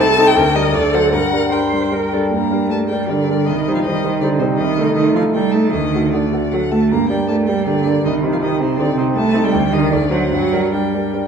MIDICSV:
0, 0, Header, 1, 4, 480
1, 0, Start_track
1, 0, Key_signature, -2, "minor"
1, 0, Tempo, 387597
1, 1403, Time_signature, 3, 2, 24, 8
1, 3831, Tempo, 371287
1, 6231, Tempo, 389864
1, 8631, Tempo, 377121
1, 12471, Tempo, 406504
1, 14075, End_track
2, 0, Start_track
2, 0, Title_t, "Violin"
2, 0, Program_c, 0, 40
2, 3, Note_on_c, 0, 81, 105
2, 335, Note_on_c, 0, 79, 88
2, 354, Note_off_c, 0, 81, 0
2, 692, Note_on_c, 0, 75, 76
2, 710, Note_off_c, 0, 79, 0
2, 919, Note_on_c, 0, 74, 74
2, 938, Note_off_c, 0, 75, 0
2, 1166, Note_on_c, 0, 78, 72
2, 1185, Note_off_c, 0, 74, 0
2, 1384, Note_off_c, 0, 78, 0
2, 1391, Note_on_c, 0, 78, 76
2, 1881, Note_on_c, 0, 79, 56
2, 1899, Note_off_c, 0, 78, 0
2, 2624, Note_off_c, 0, 79, 0
2, 2882, Note_on_c, 0, 82, 51
2, 3323, Note_off_c, 0, 82, 0
2, 3352, Note_on_c, 0, 81, 52
2, 3447, Note_off_c, 0, 81, 0
2, 3574, Note_on_c, 0, 79, 44
2, 3808, Note_off_c, 0, 79, 0
2, 3816, Note_on_c, 0, 74, 49
2, 4302, Note_on_c, 0, 75, 54
2, 4322, Note_off_c, 0, 74, 0
2, 4668, Note_off_c, 0, 75, 0
2, 4676, Note_on_c, 0, 77, 47
2, 4726, Note_off_c, 0, 77, 0
2, 4781, Note_on_c, 0, 75, 54
2, 5258, Note_off_c, 0, 75, 0
2, 5269, Note_on_c, 0, 74, 54
2, 5366, Note_off_c, 0, 74, 0
2, 5507, Note_on_c, 0, 72, 56
2, 5604, Note_off_c, 0, 72, 0
2, 5733, Note_on_c, 0, 75, 57
2, 6211, Note_off_c, 0, 75, 0
2, 6227, Note_on_c, 0, 75, 51
2, 6457, Note_off_c, 0, 75, 0
2, 6485, Note_on_c, 0, 77, 49
2, 6575, Note_off_c, 0, 77, 0
2, 6709, Note_on_c, 0, 79, 56
2, 6929, Note_on_c, 0, 81, 55
2, 6948, Note_off_c, 0, 79, 0
2, 7174, Note_off_c, 0, 81, 0
2, 7188, Note_on_c, 0, 75, 46
2, 7659, Note_off_c, 0, 75, 0
2, 7663, Note_on_c, 0, 74, 41
2, 8159, Note_on_c, 0, 78, 50
2, 8178, Note_off_c, 0, 74, 0
2, 8402, Note_on_c, 0, 81, 49
2, 8420, Note_off_c, 0, 78, 0
2, 8637, Note_off_c, 0, 81, 0
2, 8656, Note_on_c, 0, 82, 54
2, 8870, Note_off_c, 0, 82, 0
2, 8878, Note_on_c, 0, 79, 47
2, 9109, Note_off_c, 0, 79, 0
2, 9117, Note_on_c, 0, 81, 49
2, 9213, Note_off_c, 0, 81, 0
2, 9355, Note_on_c, 0, 79, 43
2, 9595, Note_off_c, 0, 79, 0
2, 9607, Note_on_c, 0, 74, 50
2, 10082, Note_off_c, 0, 74, 0
2, 10102, Note_on_c, 0, 75, 55
2, 10204, Note_off_c, 0, 75, 0
2, 10447, Note_on_c, 0, 77, 44
2, 10494, Note_off_c, 0, 77, 0
2, 10572, Note_on_c, 0, 75, 53
2, 10799, Note_off_c, 0, 75, 0
2, 10816, Note_on_c, 0, 72, 49
2, 11042, Note_on_c, 0, 74, 57
2, 11061, Note_off_c, 0, 72, 0
2, 11275, Note_off_c, 0, 74, 0
2, 11281, Note_on_c, 0, 72, 48
2, 11373, Note_off_c, 0, 72, 0
2, 11513, Note_on_c, 0, 81, 68
2, 11867, Note_on_c, 0, 79, 67
2, 11886, Note_off_c, 0, 81, 0
2, 12233, Note_on_c, 0, 75, 63
2, 12252, Note_off_c, 0, 79, 0
2, 12492, Note_on_c, 0, 74, 57
2, 12509, Note_off_c, 0, 75, 0
2, 12706, Note_on_c, 0, 78, 56
2, 12724, Note_off_c, 0, 74, 0
2, 12935, Note_off_c, 0, 78, 0
2, 12942, Note_on_c, 0, 78, 59
2, 13419, Note_off_c, 0, 78, 0
2, 13438, Note_on_c, 0, 79, 39
2, 14075, Note_off_c, 0, 79, 0
2, 14075, End_track
3, 0, Start_track
3, 0, Title_t, "Grand piano"
3, 0, Program_c, 1, 0
3, 0, Control_c, 1, 64, 127
3, 0, Note_on_c, 1, 36, 67
3, 14, Control_c, 1, 64, 0
3, 208, Note_off_c, 1, 36, 0
3, 210, Control_c, 1, 64, 127
3, 219, Note_on_c, 1, 60, 51
3, 225, Note_on_c, 1, 63, 54
3, 226, Note_on_c, 1, 69, 59
3, 431, Note_off_c, 1, 60, 0
3, 435, Note_off_c, 1, 63, 0
3, 435, Note_off_c, 1, 69, 0
3, 445, Note_on_c, 1, 38, 59
3, 478, Control_c, 1, 64, 0
3, 660, Control_c, 1, 64, 127
3, 676, Note_off_c, 1, 38, 0
3, 680, Note_on_c, 1, 62, 41
3, 681, Note_on_c, 1, 55, 42
3, 691, Note_on_c, 1, 70, 44
3, 893, Note_off_c, 1, 62, 0
3, 894, Note_off_c, 1, 55, 0
3, 899, Note_off_c, 1, 70, 0
3, 923, Note_on_c, 1, 38, 53
3, 947, Control_c, 1, 64, 0
3, 1144, Control_c, 1, 64, 127
3, 1153, Note_off_c, 1, 38, 0
3, 1156, Note_on_c, 1, 54, 41
3, 1160, Note_on_c, 1, 72, 44
3, 1161, Note_on_c, 1, 62, 41
3, 1377, Note_off_c, 1, 54, 0
3, 1379, Note_off_c, 1, 62, 0
3, 1379, Note_off_c, 1, 72, 0
3, 1387, Note_on_c, 1, 43, 50
3, 1426, Control_c, 1, 64, 0
3, 1616, Control_c, 1, 64, 127
3, 1632, Note_off_c, 1, 43, 0
3, 1640, Note_on_c, 1, 55, 35
3, 1642, Note_on_c, 1, 62, 38
3, 1650, Note_on_c, 1, 70, 40
3, 1863, Note_off_c, 1, 55, 0
3, 1865, Note_off_c, 1, 62, 0
3, 1869, Note_off_c, 1, 70, 0
3, 1881, Note_on_c, 1, 55, 36
3, 1891, Note_on_c, 1, 62, 35
3, 1891, Note_on_c, 1, 70, 39
3, 2108, Note_off_c, 1, 55, 0
3, 2113, Note_off_c, 1, 62, 0
3, 2113, Note_off_c, 1, 70, 0
3, 2132, Note_on_c, 1, 55, 31
3, 2144, Note_on_c, 1, 62, 31
3, 2146, Note_on_c, 1, 70, 35
3, 2356, Note_off_c, 1, 55, 0
3, 2363, Note_off_c, 1, 62, 0
3, 2364, Note_off_c, 1, 70, 0
3, 2377, Note_on_c, 1, 55, 35
3, 2381, Note_on_c, 1, 62, 34
3, 2386, Note_on_c, 1, 70, 34
3, 2601, Note_off_c, 1, 55, 0
3, 2604, Note_off_c, 1, 62, 0
3, 2606, Note_off_c, 1, 70, 0
3, 2638, Note_on_c, 1, 55, 38
3, 2646, Note_on_c, 1, 62, 37
3, 2648, Note_on_c, 1, 70, 42
3, 2852, Note_off_c, 1, 55, 0
3, 2856, Note_off_c, 1, 62, 0
3, 2857, Note_off_c, 1, 70, 0
3, 2875, Note_on_c, 1, 43, 36
3, 2894, Control_c, 1, 64, 0
3, 3082, Control_c, 1, 64, 127
3, 3105, Note_off_c, 1, 43, 0
3, 3107, Note_on_c, 1, 55, 30
3, 3114, Note_on_c, 1, 62, 28
3, 3115, Note_on_c, 1, 70, 35
3, 3324, Note_off_c, 1, 55, 0
3, 3328, Note_off_c, 1, 62, 0
3, 3329, Note_off_c, 1, 70, 0
3, 3350, Note_on_c, 1, 55, 29
3, 3356, Note_on_c, 1, 62, 31
3, 3360, Note_on_c, 1, 70, 30
3, 3566, Note_off_c, 1, 55, 0
3, 3569, Note_off_c, 1, 62, 0
3, 3571, Note_off_c, 1, 70, 0
3, 3605, Note_on_c, 1, 62, 28
3, 3607, Note_on_c, 1, 55, 28
3, 3613, Note_on_c, 1, 70, 33
3, 3810, Note_off_c, 1, 55, 0
3, 3814, Note_off_c, 1, 62, 0
3, 3819, Note_off_c, 1, 70, 0
3, 3828, Note_on_c, 1, 55, 30
3, 3836, Note_on_c, 1, 62, 29
3, 3840, Note_on_c, 1, 70, 33
3, 4053, Note_off_c, 1, 55, 0
3, 4057, Note_off_c, 1, 62, 0
3, 4060, Note_off_c, 1, 70, 0
3, 4093, Note_on_c, 1, 55, 33
3, 4095, Note_on_c, 1, 62, 33
3, 4105, Note_on_c, 1, 70, 35
3, 4307, Note_off_c, 1, 55, 0
3, 4308, Note_off_c, 1, 62, 0
3, 4313, Note_off_c, 1, 70, 0
3, 4328, Note_on_c, 1, 36, 40
3, 4347, Control_c, 1, 64, 0
3, 4557, Control_c, 1, 64, 127
3, 4560, Note_off_c, 1, 36, 0
3, 4585, Note_on_c, 1, 55, 33
3, 4591, Note_on_c, 1, 63, 37
3, 4592, Note_on_c, 1, 72, 39
3, 4792, Note_off_c, 1, 55, 0
3, 4795, Note_off_c, 1, 63, 0
3, 4796, Note_off_c, 1, 72, 0
3, 4824, Note_on_c, 1, 55, 34
3, 4829, Note_on_c, 1, 72, 37
3, 4830, Note_on_c, 1, 63, 34
3, 5030, Note_off_c, 1, 55, 0
3, 5032, Note_off_c, 1, 72, 0
3, 5033, Note_off_c, 1, 63, 0
3, 5056, Note_on_c, 1, 55, 33
3, 5062, Note_on_c, 1, 63, 32
3, 5070, Note_on_c, 1, 72, 38
3, 5264, Note_off_c, 1, 55, 0
3, 5267, Note_off_c, 1, 63, 0
3, 5271, Note_off_c, 1, 72, 0
3, 5293, Note_on_c, 1, 55, 35
3, 5306, Note_on_c, 1, 63, 32
3, 5307, Note_on_c, 1, 72, 39
3, 5501, Note_off_c, 1, 55, 0
3, 5507, Note_off_c, 1, 63, 0
3, 5508, Note_off_c, 1, 72, 0
3, 5531, Note_on_c, 1, 55, 39
3, 5532, Note_on_c, 1, 63, 35
3, 5543, Note_on_c, 1, 72, 39
3, 5738, Note_off_c, 1, 55, 0
3, 5739, Note_off_c, 1, 63, 0
3, 5745, Note_off_c, 1, 72, 0
3, 5763, Note_on_c, 1, 36, 47
3, 5777, Control_c, 1, 64, 0
3, 5973, Control_c, 1, 64, 127
3, 5989, Note_off_c, 1, 36, 0
3, 6011, Note_on_c, 1, 57, 41
3, 6014, Note_on_c, 1, 63, 36
3, 6022, Note_on_c, 1, 69, 41
3, 6217, Note_off_c, 1, 57, 0
3, 6219, Note_off_c, 1, 63, 0
3, 6223, Note_off_c, 1, 69, 0
3, 6240, Note_on_c, 1, 57, 37
3, 6247, Note_on_c, 1, 63, 35
3, 6248, Note_on_c, 1, 69, 39
3, 6445, Note_off_c, 1, 57, 0
3, 6449, Note_off_c, 1, 63, 0
3, 6449, Note_off_c, 1, 69, 0
3, 6475, Note_on_c, 1, 57, 33
3, 6482, Note_on_c, 1, 63, 30
3, 6488, Note_on_c, 1, 69, 36
3, 6683, Note_off_c, 1, 57, 0
3, 6686, Note_off_c, 1, 63, 0
3, 6690, Note_off_c, 1, 69, 0
3, 6715, Note_on_c, 1, 57, 34
3, 6723, Note_on_c, 1, 69, 36
3, 6725, Note_on_c, 1, 63, 29
3, 6923, Note_off_c, 1, 57, 0
3, 6927, Note_off_c, 1, 69, 0
3, 6928, Note_off_c, 1, 63, 0
3, 6957, Note_on_c, 1, 57, 34
3, 6958, Note_on_c, 1, 63, 31
3, 6963, Note_on_c, 1, 69, 32
3, 7165, Note_off_c, 1, 57, 0
3, 7165, Note_off_c, 1, 63, 0
3, 7168, Note_off_c, 1, 69, 0
3, 7193, Note_on_c, 1, 38, 42
3, 7205, Control_c, 1, 64, 0
3, 7412, Control_c, 1, 64, 127
3, 7421, Note_off_c, 1, 38, 0
3, 7457, Note_on_c, 1, 57, 30
3, 7463, Note_on_c, 1, 66, 31
3, 7471, Note_on_c, 1, 69, 33
3, 7659, Note_off_c, 1, 57, 0
3, 7662, Note_off_c, 1, 66, 0
3, 7667, Note_off_c, 1, 69, 0
3, 7693, Note_on_c, 1, 57, 28
3, 7693, Note_on_c, 1, 66, 27
3, 7702, Note_on_c, 1, 69, 32
3, 7896, Note_off_c, 1, 57, 0
3, 7897, Note_off_c, 1, 66, 0
3, 7902, Note_off_c, 1, 69, 0
3, 7921, Note_on_c, 1, 57, 29
3, 7937, Note_on_c, 1, 66, 30
3, 7938, Note_on_c, 1, 69, 29
3, 8131, Note_off_c, 1, 57, 0
3, 8140, Note_off_c, 1, 66, 0
3, 8141, Note_off_c, 1, 69, 0
3, 8177, Note_on_c, 1, 57, 30
3, 8184, Note_on_c, 1, 66, 28
3, 8186, Note_on_c, 1, 69, 31
3, 8382, Note_off_c, 1, 57, 0
3, 8385, Note_off_c, 1, 66, 0
3, 8386, Note_off_c, 1, 69, 0
3, 8404, Note_on_c, 1, 57, 33
3, 8404, Note_on_c, 1, 66, 32
3, 8407, Note_on_c, 1, 69, 33
3, 8614, Note_off_c, 1, 57, 0
3, 8614, Note_off_c, 1, 66, 0
3, 8616, Note_off_c, 1, 69, 0
3, 8651, Note_on_c, 1, 43, 39
3, 8656, Control_c, 1, 64, 0
3, 8871, Note_on_c, 1, 58, 30
3, 8879, Note_off_c, 1, 43, 0
3, 8884, Note_on_c, 1, 62, 32
3, 8889, Note_on_c, 1, 67, 37
3, 8898, Control_c, 1, 64, 127
3, 9090, Note_off_c, 1, 58, 0
3, 9097, Note_off_c, 1, 62, 0
3, 9099, Note_off_c, 1, 67, 0
3, 9117, Note_on_c, 1, 58, 29
3, 9118, Note_on_c, 1, 67, 32
3, 9122, Note_on_c, 1, 62, 31
3, 9334, Note_off_c, 1, 58, 0
3, 9334, Note_off_c, 1, 67, 0
3, 9336, Note_off_c, 1, 62, 0
3, 9368, Note_on_c, 1, 58, 30
3, 9375, Note_on_c, 1, 62, 28
3, 9384, Note_on_c, 1, 67, 32
3, 9582, Note_off_c, 1, 58, 0
3, 9587, Note_off_c, 1, 62, 0
3, 9591, Note_off_c, 1, 67, 0
3, 9612, Note_on_c, 1, 58, 28
3, 9615, Note_on_c, 1, 62, 31
3, 9615, Note_on_c, 1, 67, 32
3, 9827, Note_off_c, 1, 58, 0
3, 9828, Note_off_c, 1, 62, 0
3, 9828, Note_off_c, 1, 67, 0
3, 9854, Note_on_c, 1, 62, 33
3, 9856, Note_on_c, 1, 58, 31
3, 9869, Note_on_c, 1, 67, 36
3, 10068, Note_off_c, 1, 62, 0
3, 10070, Note_off_c, 1, 58, 0
3, 10077, Note_off_c, 1, 67, 0
3, 10098, Note_on_c, 1, 36, 44
3, 10113, Control_c, 1, 64, 0
3, 10289, Control_c, 1, 64, 127
3, 10320, Note_on_c, 1, 60, 37
3, 10325, Note_off_c, 1, 36, 0
3, 10331, Note_on_c, 1, 63, 35
3, 10339, Note_on_c, 1, 67, 36
3, 10536, Note_off_c, 1, 60, 0
3, 10542, Note_off_c, 1, 63, 0
3, 10546, Note_off_c, 1, 67, 0
3, 10565, Note_on_c, 1, 60, 33
3, 10570, Note_on_c, 1, 63, 31
3, 10579, Note_on_c, 1, 67, 36
3, 10776, Note_off_c, 1, 60, 0
3, 10780, Note_off_c, 1, 63, 0
3, 10784, Note_off_c, 1, 67, 0
3, 10795, Note_on_c, 1, 60, 31
3, 10804, Note_on_c, 1, 63, 31
3, 10807, Note_on_c, 1, 67, 38
3, 11010, Note_off_c, 1, 60, 0
3, 11016, Note_off_c, 1, 63, 0
3, 11017, Note_off_c, 1, 67, 0
3, 11038, Note_on_c, 1, 60, 36
3, 11049, Note_on_c, 1, 63, 35
3, 11049, Note_on_c, 1, 67, 40
3, 11250, Note_off_c, 1, 60, 0
3, 11256, Note_off_c, 1, 63, 0
3, 11256, Note_off_c, 1, 67, 0
3, 11277, Note_on_c, 1, 60, 39
3, 11280, Note_on_c, 1, 63, 39
3, 11294, Note_on_c, 1, 67, 45
3, 11487, Note_off_c, 1, 60, 0
3, 11488, Note_off_c, 1, 63, 0
3, 11496, Note_off_c, 1, 67, 0
3, 11514, Note_on_c, 1, 36, 52
3, 11534, Control_c, 1, 64, 0
3, 11728, Control_c, 1, 64, 127
3, 11731, Note_on_c, 1, 60, 41
3, 11740, Note_off_c, 1, 36, 0
3, 11741, Note_on_c, 1, 63, 42
3, 11742, Note_on_c, 1, 69, 49
3, 11953, Note_off_c, 1, 60, 0
3, 11958, Note_off_c, 1, 63, 0
3, 11959, Note_off_c, 1, 69, 0
3, 11985, Note_on_c, 1, 38, 51
3, 12008, Control_c, 1, 64, 0
3, 12211, Control_c, 1, 64, 127
3, 12219, Note_off_c, 1, 38, 0
3, 12234, Note_on_c, 1, 55, 37
3, 12240, Note_on_c, 1, 62, 36
3, 12247, Note_on_c, 1, 70, 38
3, 12450, Note_off_c, 1, 55, 0
3, 12453, Note_off_c, 1, 62, 0
3, 12457, Note_off_c, 1, 70, 0
3, 12475, Note_on_c, 1, 38, 44
3, 12492, Control_c, 1, 64, 0
3, 12669, Control_c, 1, 64, 127
3, 12696, Note_off_c, 1, 38, 0
3, 12696, Note_on_c, 1, 54, 38
3, 12709, Note_on_c, 1, 62, 36
3, 12709, Note_on_c, 1, 72, 44
3, 12912, Note_off_c, 1, 54, 0
3, 12919, Note_off_c, 1, 62, 0
3, 12919, Note_off_c, 1, 72, 0
3, 12940, Note_on_c, 1, 43, 40
3, 12966, Control_c, 1, 64, 0
3, 13176, Note_off_c, 1, 43, 0
3, 13186, Note_on_c, 1, 55, 30
3, 13193, Note_on_c, 1, 62, 31
3, 13195, Note_on_c, 1, 70, 38
3, 13205, Control_c, 1, 64, 127
3, 13404, Note_off_c, 1, 55, 0
3, 13409, Note_off_c, 1, 62, 0
3, 13409, Note_off_c, 1, 70, 0
3, 13433, Note_on_c, 1, 55, 29
3, 13436, Note_on_c, 1, 62, 31
3, 13442, Note_on_c, 1, 70, 30
3, 13649, Note_off_c, 1, 55, 0
3, 13651, Note_off_c, 1, 62, 0
3, 13654, Note_off_c, 1, 70, 0
3, 13684, Note_on_c, 1, 62, 27
3, 13690, Note_on_c, 1, 55, 26
3, 13692, Note_on_c, 1, 70, 34
3, 13894, Note_off_c, 1, 62, 0
3, 13896, Note_off_c, 1, 55, 0
3, 13899, Note_off_c, 1, 70, 0
3, 13914, Note_on_c, 1, 55, 28
3, 13916, Note_on_c, 1, 62, 30
3, 13922, Note_on_c, 1, 70, 28
3, 14075, Note_off_c, 1, 55, 0
3, 14075, Note_off_c, 1, 62, 0
3, 14075, Note_off_c, 1, 70, 0
3, 14075, End_track
4, 0, Start_track
4, 0, Title_t, "Cello"
4, 0, Program_c, 2, 42
4, 0, Note_on_c, 2, 69, 76
4, 460, Note_on_c, 2, 70, 70
4, 478, Note_off_c, 2, 69, 0
4, 893, Note_off_c, 2, 70, 0
4, 901, Note_on_c, 2, 69, 68
4, 1393, Note_on_c, 2, 70, 59
4, 1411, Note_off_c, 2, 69, 0
4, 1838, Note_off_c, 2, 70, 0
4, 1865, Note_on_c, 2, 72, 53
4, 2381, Note_on_c, 2, 70, 49
4, 2399, Note_off_c, 2, 72, 0
4, 2635, Note_on_c, 2, 69, 47
4, 2654, Note_off_c, 2, 70, 0
4, 2859, Note_off_c, 2, 69, 0
4, 2866, Note_on_c, 2, 58, 55
4, 3342, Note_on_c, 2, 57, 54
4, 3360, Note_off_c, 2, 58, 0
4, 3586, Note_off_c, 2, 57, 0
4, 3592, Note_on_c, 2, 55, 60
4, 3851, Note_on_c, 2, 50, 61
4, 3871, Note_off_c, 2, 55, 0
4, 4343, Note_on_c, 2, 51, 58
4, 4362, Note_off_c, 2, 50, 0
4, 4674, Note_off_c, 2, 51, 0
4, 4682, Note_on_c, 2, 53, 57
4, 4731, Note_off_c, 2, 53, 0
4, 4803, Note_on_c, 2, 51, 61
4, 5273, Note_on_c, 2, 50, 69
4, 5292, Note_off_c, 2, 51, 0
4, 5500, Note_on_c, 2, 48, 61
4, 5519, Note_off_c, 2, 50, 0
4, 5731, Note_on_c, 2, 51, 68
4, 5750, Note_off_c, 2, 48, 0
4, 6212, Note_off_c, 2, 51, 0
4, 6219, Note_on_c, 2, 51, 66
4, 6453, Note_off_c, 2, 51, 0
4, 6460, Note_on_c, 2, 53, 62
4, 6555, Note_off_c, 2, 53, 0
4, 6703, Note_on_c, 2, 55, 61
4, 6947, Note_on_c, 2, 57, 58
4, 6965, Note_off_c, 2, 55, 0
4, 7174, Note_on_c, 2, 51, 62
4, 7193, Note_off_c, 2, 57, 0
4, 7670, Note_on_c, 2, 50, 47
4, 7689, Note_off_c, 2, 51, 0
4, 8150, Note_off_c, 2, 50, 0
4, 8165, Note_on_c, 2, 54, 51
4, 8258, Note_off_c, 2, 54, 0
4, 8406, Note_on_c, 2, 57, 55
4, 8653, Note_on_c, 2, 58, 62
4, 8672, Note_off_c, 2, 57, 0
4, 8881, Note_off_c, 2, 58, 0
4, 8889, Note_on_c, 2, 55, 55
4, 8982, Note_off_c, 2, 55, 0
4, 9108, Note_on_c, 2, 57, 53
4, 9369, Note_on_c, 2, 55, 60
4, 9388, Note_off_c, 2, 57, 0
4, 9600, Note_on_c, 2, 50, 59
4, 9619, Note_off_c, 2, 55, 0
4, 10070, Note_off_c, 2, 50, 0
4, 10078, Note_on_c, 2, 51, 58
4, 10457, Note_on_c, 2, 53, 46
4, 10476, Note_off_c, 2, 51, 0
4, 10562, Note_on_c, 2, 51, 59
4, 10581, Note_off_c, 2, 53, 0
4, 10805, Note_on_c, 2, 48, 61
4, 10824, Note_off_c, 2, 51, 0
4, 11012, Note_on_c, 2, 50, 68
4, 11031, Note_off_c, 2, 48, 0
4, 11240, Note_off_c, 2, 50, 0
4, 11247, Note_on_c, 2, 48, 59
4, 11490, Note_off_c, 2, 48, 0
4, 11511, Note_on_c, 2, 57, 69
4, 11870, Note_on_c, 2, 55, 63
4, 11889, Note_off_c, 2, 57, 0
4, 12227, Note_on_c, 2, 51, 74
4, 12247, Note_off_c, 2, 55, 0
4, 12472, Note_on_c, 2, 50, 65
4, 12489, Note_off_c, 2, 51, 0
4, 12690, Note_off_c, 2, 50, 0
4, 12697, Note_on_c, 2, 54, 60
4, 12922, Note_off_c, 2, 54, 0
4, 12929, Note_on_c, 2, 54, 69
4, 13409, Note_on_c, 2, 55, 52
4, 13426, Note_off_c, 2, 54, 0
4, 14075, Note_off_c, 2, 55, 0
4, 14075, End_track
0, 0, End_of_file